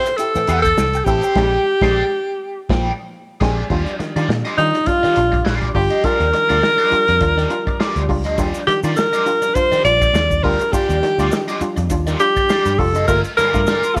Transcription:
Already playing: C5
0.06 E4 G4, muted overdriven electric guitar stroke, closed hi-hat, shaker
0.17 E4 G4 A4, closed hi-hat, shaker
0.35 A2 E3, muted picked electric bass stroke, muted overdriven electric guitar stroke, closed hi-hat, shaker
0.47 E2 E4 G4 A4 C5 G5, closed hi-hat, shaker
0.62 A4, muted overdriven electric guitar stroke, kick, closed hi-hat, shaker
0.77 C2, muted overdriven electric guitar stroke, snare, shaker
0.93 muted overdriven electric guitar stroke, closed hi-hat, shaker
1.05 A1 C4 E4 G4 A4, kick, closed hi-hat, shaker
1.09 C5 A5
1.21 G5, closed hi-hat, shaker
1.26 A4 C5
1.35 A#1 G#3 C4 D4 G4 G#4 D5 G5, kick, snare, crash
1.81 A#1 G#3 C4 D4 G4 G#4 D5 G5, kick, snare
2.69 A#1 A#2 F3 G#4 D5 G5, kick, snare
3.40 A#1 G#3 C4 D4 G4 G#4 D5 G#5, kick, snare, crash
3.70 D#2 F3 G3 D4 F4 G4 D5, kick, crash
3.86 closed hi-hat
3.99 D#3, muted overdriven electric guitar stroke, muted picked electric bass stroke, snare, closed hi-hat
4.16 D#3 G3 D4 F4 G4 D5, closed hi-hat
4.29 A#2 D#3, muted overdriven electric guitar stroke, snare
4.45 F4 G4 D#5, closed hi-hat
4.58 D#3 G3 D4 D#4 F4, muted overdriven electric guitar stroke, closed hi-hat
4.75 D4 F4, muted overdriven electric guitar stroke, closed hi-hat
4.86 D4 F4, muted overdriven electric guitar stroke, kick, closed hi-hat
5.03 D#3 F4 G4 D5, muted picked electric bass stroke, closed hi-hat
5.16 A#1 D4 F4, muted overdriven electric guitar stroke, closed hi-hat
5.32 muted overdriven electric guitar stroke, kick, closed hi-hat
5.45 A#1 F4 G4 D5, snare
5.62 kick, closed hi-hat
5.75 G1 G3 D4 F4 G4, muted overdriven electric guitar stroke, kick, open hi-hat
5.90 F4 G4 D#5, closed hi-hat
6.04 G3 D4 F4 G4 A#4 D5, kick, closed hi-hat
6.20 D#2, closed hi-hat
6.33 D#3, muted overdriven electric guitar stroke, snare, closed hi-hat
6.49 D2 G3 D4 F4 G4 D5, closed hi-hat
6.62 D#3, muted overdriven electric guitar stroke, snare
6.78 F4 G4 D#5, closed hi-hat
6.91 G3 D4 F4, muted overdriven electric guitar stroke, muted picked electric bass stroke, closed hi-hat
7.08 F2 D4 F4, muted overdriven electric guitar stroke, closed hi-hat
7.21 D#2 D4 F4, muted overdriven electric guitar stroke, kick, closed hi-hat
7.38 D#3 F4 G4 D5, closed hi-hat
7.50 D4 F4, muted overdriven electric guitar stroke, closed hi-hat
7.67 muted overdriven electric guitar stroke, kick, closed hi-hat
7.80 F4 G4 D5, snare
7.96 D2, closed hi-hat
8.08 C#2 G3 D4 F4, muted overdriven electric guitar stroke, kick, open hi-hat
8.24 D2 F4 G4 D#5, closed hi-hat
8.38 D#2 G3 D4 F4 G4 D5, kick, closed hi-hat, shaker
8.54 closed hi-hat, shaker
8.67 D#3 G4, muted picked electric bass stroke, muted overdriven electric guitar stroke, snare, closed hi-hat
8.83 D#3 G3 D4 F4 G4 D5, closed hi-hat, shaker
8.96 D#3 A#4, muted overdriven electric guitar stroke, snare, shaker
9.13 F4 G4 D#5, closed hi-hat, shaker
9.26 G3 D4 F4, muted overdriven electric guitar stroke, closed hi-hat, shaker
9.42 D4 F4, muted overdriven electric guitar stroke, closed hi-hat, shaker
9.54 D4 F4 C5, muted overdriven electric guitar stroke, kick, closed hi-hat, shaker
9.72 D#3 F4 G4 D5, muted picked electric bass stroke, closed hi-hat, shaker
9.85 A#1 D4 F4 D5, muted overdriven electric guitar stroke, closed hi-hat, shaker
10.02 muted overdriven electric guitar stroke, kick, closed hi-hat, shaker
10.14 D#2, muted overdriven electric guitar stroke, snare, shaker
10.31 kick, closed hi-hat, shaker
10.43 D2 G3 D4 F4 G4 A#4 D5, kick, open hi-hat
10.59 muted overdriven electric guitar stroke, closed hi-hat, shaker
10.72 G3 D4 F4 G4 D5, kick, closed hi-hat, shaker
10.89 D#2, closed hi-hat, shaker
11.02 D#3, muted overdriven electric guitar stroke, snare, closed hi-hat
11.18 D2 G3 D4 F4 G4 D5, closed hi-hat, shaker
11.32 D#3, muted overdriven electric guitar stroke, snare, shaker
11.48 F4 G4 D#5, closed hi-hat, shaker
11.61 G3 D4 F4, muted overdriven electric guitar stroke, muted picked electric bass stroke, closed hi-hat, shaker
11.76 F2 D4 F4, muted overdriven electric guitar stroke, closed hi-hat, shaker
11.90 D#2 D4 F4, muted overdriven electric guitar stroke, kick, closed hi-hat, shaker
12.07 D#3 F4 G4 D5, closed hi-hat, shaker
12.20 D4 F4 G4, muted overdriven electric guitar stroke, closed hi-hat, shaker
12.36 muted overdriven electric guitar stroke, kick, closed hi-hat, shaker
12.49 F4 G4 D5, snare, shaker
12.65 G2, closed hi-hat, shaker
12.79 F1 G3 D4 F4 A4, muted overdriven electric guitar stroke, kick, open hi-hat
12.95 F#1 F4 G4 D#5, closed hi-hat, shaker
13.08 G1 A3 A#3 F4 A#4, kick, crash, shaker
13.24 closed hi-hat, shaker
13.37 G2 D3 F4 A#4 D5, muted picked electric bass stroke, snare, closed hi-hat, shaker
13.54 G2 A3 A#3 F4, kick, closed hi-hat, shaker
13.67 G2 D3 F4 A#4 D5, snare, shaker
13.83 muted overdriven electric guitar stroke, closed hi-hat, shaker
13.96 A3 A#3 F4, kick, open hi-hat

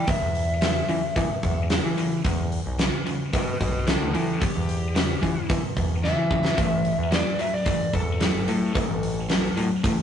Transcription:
0.07 E2 B2 E5, kick, open hi-hat
0.22 E2
0.35 open hi-hat
0.61 E2 C#3, snare, open hi-hat
0.89 E2 C#3 E3, open hi-hat
1.16 E2 B2 E3, kick, open hi-hat
1.43 E2, kick, open hi-hat
1.70 E2 C#3, snare, open hi-hat
1.85 E3
1.97 E2 C#3, open hi-hat
2.24 E2 B2, kick, open hi-hat
2.52 open hi-hat
2.66 B1
2.79 E2 C#3, snare, open hi-hat
3.06 E2 C#3, open hi-hat
3.33 E2 B2 F#4 B4, kick, open hi-hat
3.61 B1 F#4 B4, kick, open hi-hat
3.87 E2 C#3 E4 A4, snare, open hi-hat
4.02 D2
4.14 E2 C#3 E3 E4 A4, open hi-hat
4.41 E2 B2 G4, kick, open hi-hat
4.56 E2
4.69 open hi-hat
4.95 E2 C#3, snare, open hi-hat
5.22 E2 C#3 E3, kick, open hi-hat
5.49 E2 B2 E3, kick, open hi-hat
5.77 E2, kick, open hi-hat
6.03 E2 C#3 E5, snare
6.17 E3
6.31 E2 C#3, kick
6.45 snare
6.57 A1 A2 E3, kick, open hi-hat
6.85 open hi-hat
6.98 E2
7.11 A2 F#3 D5, snare, open hi-hat
7.39 A2 F#3 E5, open hi-hat
7.54 D5
7.65 A2 E3, kick, open hi-hat
7.93 E2 A4, kick, open hi-hat
8.20 A2 F#3, snare, open hi-hat
8.35 G1
8.47 A2 F#3, open hi-hat
8.75 A2 E3, kick, open hi-hat
8.90 A1
9.03 open hi-hat
9.29 A2 F#3, snare, open hi-hat
9.57 A2 F#3, open hi-hat
9.83 A2 E3, kick, open hi-hat

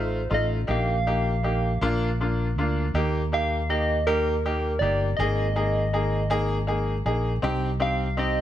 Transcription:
Already playing: A1 A3 D#4 F4 C5
0.30 A1 A3 D#4 F4
0.34 D#5
0.67 A#1 A#3 D#4 G4 F5
1.07 A#3 D#4 G4
1.43 A#3 D#4 G4
1.81 A#1 A#3 D4 F4
2.21 A#3 D4 F4
2.56 D2 A#3 D4 F4
2.94 D#2 A#3 D#4 G4
3.32 A#3 D#4 G4 F5
3.69 A#3 D#4 G4 D#5
4.07 A#3 D#4 G4 A#4
4.46 A#3 D#4 G4
4.79 G1 A#3 D#4 G4 D5
5.17 G#1 A#3 D#4 G#4 D#5
5.56 A#3 D#4 G#4
5.93 A#3 D#4 G#4
6.30 A#3 D#4 G#4
6.67 A#3 D#4 G#4
7.05 A#1 A#3 D#4 G#4
7.42 C2 C4 D#4 G4
7.80 C4 D#4 G4 F5
8.17 C4 D#4 G4 D#5

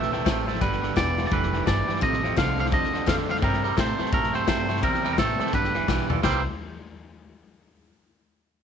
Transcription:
Already playing: A#1 E3 A3 E5
0.02 snare
0.11 C3 A3 C5 E5 G5, snare
0.25 A1 C3 F3 A3 C5 E5 G5, kick, snare, hi-hat pedal
0.46 C3 A3 C5 E5 A5, snare
0.55 snare
0.60 G1 G2 D3 G3 B4 D5 G5, kick, snare
0.72 snare
0.81 G2 D3 B4 D5 G5, snare
0.95 E1 G2 E3 G3 B3 F4 B4 D5 G5, kick, snare, hi-hat pedal
1.18 G2 E3 B3 F4 B4 D5 G5, snare
1.25 D5, snare
1.31 F1 G2 A2 E3 B4 D5 G5, kick, snare
1.43 snare
1.53 G2 E3 B4 D5 G5, snare
1.66 G1 G2 E3 B4 D5 A5, kick, snare, hi-hat pedal
1.87 G2 E3 B4 D5 G5, snare
1.96 snare
2.01 A1 F2 C3 C5 D#5 F5 A5, kick, snare
2.13 snare
2.23 F2 C3 C5 F5 C6, snare
2.36 C2 F2 D3 D#3 A3 C4 F4 C5 F5 A5, kick, snare, hi-hat pedal
2.58 F2 D3 C4 F4 C5 F5 G5, snare
2.66 snare
2.72 D#2 F2 C3 D3 C5 D#5 F5 A5, kick, snare
2.83 snare
2.93 F2 D3 C5 F5 A5, muted upright bass stroke, snare
3.06 F2 D3 D#3 A3 C4 F4 C5 F5 A5, kick, snare, hi-hat pedal
3.28 F2 D3 C5 F5 G5, snare
3.36 snare
3.41 G2 C3 G3 A#4 C5 E5 G5, kick, snare
3.53 snare
3.62 C3 G3 C5 E5 A#5, snare
3.77 A2 C3 E3 A3 A#3 C4 E4 C5 E5 A5, kick, snare, hi-hat pedal
3.98 C3 A3 C4 E4 C5 E5 A5, muted upright bass stroke, snare
4.06 snare
4.12 G2 A#2 C3 A3 A#4 C5 E5 A#5, kick, snare
4.23 snare
4.33 C3 A3 C5 E5 G5, snare
4.46 G2 C3 E3 A3 A#3 C4 E4 C5 E5 G5, kick, snare, hi-hat pedal
4.68 C3 A3 C4 E4 C5 E5 G5, snare
4.76 snare
4.81 E2 C3 G3 A#4 C5 E5 G5, kick, snare
4.94 snare
5.02 C3 G3 C5 E5 G5, snare
5.13 A#4 C5 E5
5.18 A1 C3 E3 A3 A#3 C4 E4 A4 G5, kick, snare, hi-hat pedal
5.38 C3 A3 C4 E4 C5 E5 G5, muted upright bass stroke, snare
5.46 snare
5.53 G1 G2 D3 G3 B4 D5 G5, kick, snare
5.64 snare
5.74 G2 E3 B4 D5 F5, snare
5.87 B1 G2 E3 G3 B3 F4 B4 D5 G5, kick, snare, hi-hat pedal
6.09 G2 E3 B3 F4 B4 D5 A5, floor tom
6.23 C2 C3 E3 G3 A#3 C4 E4 C5 E5 G5, kick, snare, crash

